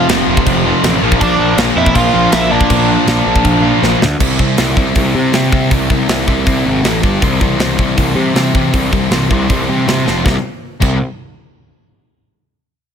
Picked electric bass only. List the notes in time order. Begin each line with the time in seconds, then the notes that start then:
0.09 F1
0.27 F1
0.47 F1
0.84 A1
1.02 A#1
1.21 A#1
1.39 A#1
1.57 A#1
1.76 F2
1.95 A#1
2.14 A#1
2.33 A#1
2.70 A#1
3.07 A#1
3.26 A#1
3.45 A#1
3.82 A#1
4.02 D2
4.20 C2
4.39 C2
4.58 C2
4.77 C2
4.96 C2
5.15 C3
5.34 C3
5.71 C2
5.90 C2
6.09 C2
6.28 C2
6.47 C2
6.66 G#1
6.84 A1
7.03 G1
7.23 C2
7.41 C2
7.59 C2
7.79 C2
7.98 C2
8.15 C3
8.35 C3
8.74 C2
8.93 C2
9.11 C2
9.31 C2
9.50 C2
9.69 C3
9.88 C3
10.07 F1
10.25 C2
10.82 C2